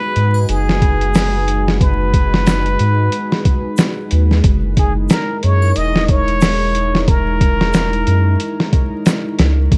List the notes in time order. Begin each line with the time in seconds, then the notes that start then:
Already playing: G#3 D#4 F#4 B4
0.16 G#2, closed hi-hat
0.34 triangle
0.49 F#1 G#4, closed hi-hat
0.69 snare
0.82 kick, closed hi-hat
1.01 closed hi-hat
1.14 snare, open hi-hat, shaker
1.48 closed hi-hat
1.68 snare
1.81 B4, kick, closed hi-hat
2.14 kick, closed hi-hat
2.34 snare
2.47 snare, closed hi-hat, shaker
2.66 closed hi-hat
2.79 G#2, closed hi-hat
3.12 closed hi-hat
3.32 snare
3.45 kick, closed hi-hat
3.77 snare, closed hi-hat, shaker
4.11 D#2, closed hi-hat
4.31 snare
4.44 F#1 D#4 E4 A#4, kick, closed hi-hat
4.77 G#4, kick, closed hi-hat
5.09 A#4, snare, closed hi-hat, shaker
5.43 F#2 C#5, closed hi-hat
5.62 triangle
5.76 E1 D#5, closed hi-hat
5.96 snare
6.08 C#5, kick, closed hi-hat
6.28 closed hi-hat
6.41 snare, open hi-hat, shaker
6.75 closed hi-hat
6.95 snare
7.08 A#4, kick, closed hi-hat
7.41 kick, closed hi-hat
7.61 snare
7.74 snare, closed hi-hat, shaker
7.93 closed hi-hat
8.07 F#2, closed hi-hat
8.40 closed hi-hat
8.60 snare
8.73 kick, closed hi-hat
9.06 snare, closed hi-hat, shaker
9.39 C#2, snare, closed hi-hat
9.71 G#1 G#3 F#4 B4, kick, closed hi-hat